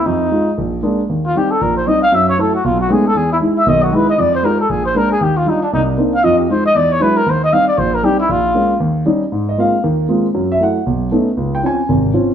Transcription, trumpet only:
X:1
M:4/4
L:1/8
Q:"Swing" 1/4=233
K:Eb
V:1 name="Trumpet"
E4 z4 | z F G =A B c e f | _f _d =A _G =F ^F ^G A | ^G =E z =e ^d _G =B d |
d c B =A _A c B A | G F E D E z2 f | e G c e d _d =B _B | c e f d c B G _F |
F4 z4 | [K:Dblyd] z8 | z8 | z8 |]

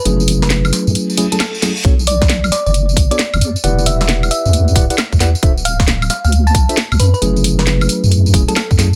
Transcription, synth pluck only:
X:1
M:4/4
L:1/16
Q:"Swing 16ths" 1/4=134
K:F#phr
V:1 name="Synth pluck"
z3 B z6 z A A z3 | z2 d z3 d d z3 d z4 | z2 e e z2 e4 z6 | z2 =f z3 f f z a z4 B B |
z3 B z6 z A A z3 |]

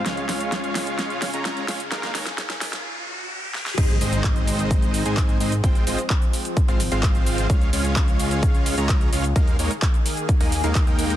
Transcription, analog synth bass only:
X:1
M:4/4
L:1/16
Q:1/4=129
K:Ab
V:1 name="Analog synth bass" clef=bass
D,,2 D,,8- D,, D,,3 D,,2 | E,,2 E,, z12 z | A,,,2 A,,,8- A,,, A,,3 A,,2 | A,,,2 A,,, z6 A,,,2 A,,,4- A,,, |
D,,2 D,,8- D,, D,,3 D,,2 | E,,2 E,, z6 E,,2 E,, E,, E,,3 |]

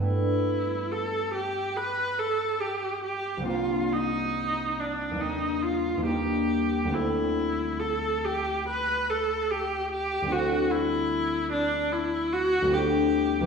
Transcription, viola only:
X:1
M:4/4
L:1/8
Q:1/4=71
K:Clyd
V:1 name="Viola"
E2 A G B A G G | =F _E2 D E F G2 | E2 A G B A G G | F E2 D E F G2 |]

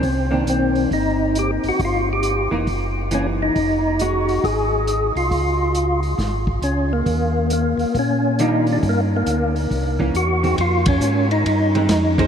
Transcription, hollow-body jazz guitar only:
X:1
M:4/4
L:1/8
Q:"Swing" 1/4=137
K:Fdor
V:1 name="Hollow-body jazz guitar"
z [E,B,D]3 z4 | z3 [_F,B,E] z2 [F,B,E]2 | z2 [A,E]3 z3 | z8 |
z6 [E,G,DF]2 | z4 z [=E,B,_D] z [_E,A,C] | z4 z [E,A,C] z [B,_DAc] |]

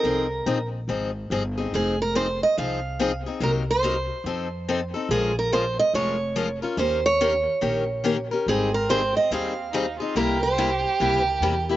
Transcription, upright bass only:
X:1
M:4/4
L:1/8
Q:"Swing" 1/4=142
K:Fm
V:1 name="Upright bass" clef=bass
C,,2 B,,,2 A,,,2 G,,,2 | F,,,4 C,,4 | C,,4 F,,4 | B,,,4 F,,,4 |
E,,4 B,,,4 | A,,,4 E,,4 | C,,4 D,,2 =E,,2 |]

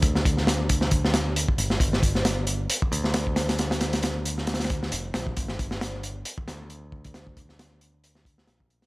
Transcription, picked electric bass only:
X:1
M:4/4
L:1/8
Q:"Swing 16ths" 1/4=135
K:Gm
V:1 name="Picked electric bass" clef=bass
D,,6 z G,,, | G,,,4 z D,,3- | D,,6 F,,, B,,, | G,,,4 z D,,3- |
D,,6 B,,,2 |]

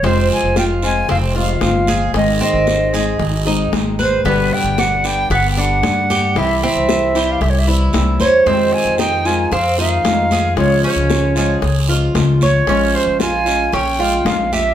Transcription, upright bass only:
X:1
M:4/4
L:1/16
Q:1/4=114
K:Fm
V:1 name="Upright bass" clef=bass
F,,,2 z F,,,4- F,,, F,,,4 G,,,4 | A,,,2 z A,,,4- A,,, A,,,4 A,,,4 | G,,,2 z G,,,4- G,,, G,,,4 G,,4 | C,,2 z C,,4- C,, C,,4 C,,2 =E,,2 |
F,,2 z F,,4- F,, F,,4 F,,4 | D,,2 z D,,4- D,, D,,4 D,,4 | B,,,2 z B,,,4- B,,, B,,,4 B,,,4 |]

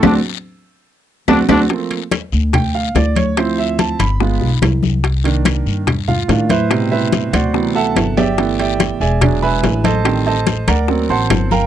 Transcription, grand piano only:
X:1
M:4/4
L:1/8
Q:1/4=144
K:Dphr
V:1 name="Grand piano"
[CD^F] z4 z [CDF] [CDF] | z4 g f d ^c | c =e a =b3 z2 | z4 z [Ff]2 [=E=Bc=e]- |
[=E=Bc=e] [EBce]2 [^Fcd^f]2 [Aefa]2 [Gdeg]- | [Gd=eg] [Gdeg]2 [_Ade_a]2 [=Be^g=b]2 [=Ac_e=a]- | [Acea] [Acea]2 [Bd^fb]2 [cfac']2 [B=fgb] |]
V:2 name="Grand piano"
z8 | [F,A,B,C] z6 z | [F,C=E]3 z [_A,=B,F] z3 | z [E,B,D]3 z2 [E,B,D] z |
[=B,,C,G,]4 [C,=E,^F,=B,]3 z | [=E,A,=B,]3 z [^F,^G,D]4 | [E,G,C] z3 [^F,B,C]3 z |]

